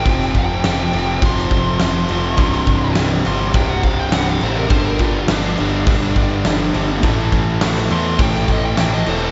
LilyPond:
<<
  \new Staff \with { instrumentName = "Lead electric guitar" } { \time 4/4 \key f \mixolydian \tempo 4 = 103 g''8 g''4. c'''4 c'''4~ | c'''4 r8 c'''8 g''16 fis''16 f''16 g''16 fis''16 f''16 c''16 bes'16 | c''16 bes'16 f'8 d'2. | r4. c'''8 g''16 g''16 ees''16 g''16 g''16 ees''16 c''16 a'16 | }
  \new Staff \with { instrumentName = "Distorted electric guitar" } { \clef bass \time 4/4 \key f \mixolydian <f, c f>4 <f, c f>8 <f, c f>8 <f, c f>4 <f, c f>8 <f, c f>8 | <c, g, c>4 <c, g, c>8 <c, g, c>8 <c, g, c>4 <c, g, c>8 <c, g, c>8 | <g, d g>4 <g, d g>8 <g, d g>8 <g, d g>4 <g, d g>8 <g, d g>8 | <a, e a>4 <a, e a>8 <a, e a>8 <a, e a>4 <a, e a>8 <a, e a>8 | }
  \new Staff \with { instrumentName = "Distorted electric guitar" } { \clef bass \time 4/4 \key f \mixolydian <f, c f>4 <f, c f>8 <f, c f>8 <f, c f>4 <f, c f>8 <f, c f>8 | <c, g, c>4 <c, g, c>8 <c, g, c>8 <c, g, c>4 <c, g, c>8 <c, g, c>8 | <g, d g>4 <g, d g>8 <g, d g>8 <g, d g>4 <g, d g>8 <g, d g>8 | <a, e a>4 <a, e a>8 <a, e a>8 <a, e a>4 <a, e a>8 <a, e a>8 | }
  \new Staff \with { instrumentName = "Overdriven electric guitar" } { \clef bass \time 4/4 \key f \mixolydian r1 | <c, g, c>2 <c, g, c>2 | <g, d g>2 <g, d g>2 | <a, e a>2 <a, e a>2 | }
  \new Staff \with { instrumentName = "Picked electric bass" } { \clef bass \time 4/4 \key f \mixolydian f,,8 f,,8 f,,8 f,,8 f,,8 f,,8 f,,8 f,,8 | c,,8 c,,8 c,,8 g,,8 c,,8 c,,8 c,,8 a,,8 | g,,8 g,,8 g,,8 g,,8 g,,8 g,,8 g,,8 g,,8 | a,,8 a,,8 a,,8 e,8 a,,8 a,,8 a,,8 e,,8 | }
  \new DrumStaff \with { instrumentName = "Drums" } \drummode { \time 4/4 <cymc bd>16 sn16 <cymc bd>8 <cymc sn>8 cymc8 <cymc bd>16 sn16 <cymc bd>8 <cymc sn>8 cymc8 | <cymc bd>16 sn16 <cymc bd>8 <cymc sn>8 cymc8 <cymc bd>8 <cymc bd>8 <cymc sn>8 cymc8 | <cymc bd>8 <cymc bd>8 <cymc sn>8 cymc8 <cymc bd>8 <cymc bd>8 <cymc sn>8 cymc8 | <cymc bd>8 <cymc bd>8 <cymc sn>8 cymc8 <cymc bd>16 sn16 <cymc bd>8 <cymc sn>8 cymc8 | }
>>